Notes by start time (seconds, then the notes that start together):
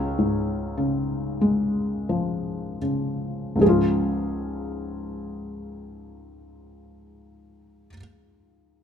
Already playing: C#2 C#4 F4 G#4 C#5
0.18 G#2
0.78 C#3
1.41 G#3
2.09 F3
2.82 C#3
3.56 C#2 G#2
3.60 F3 G#3 G#4
3.66 C#4 F4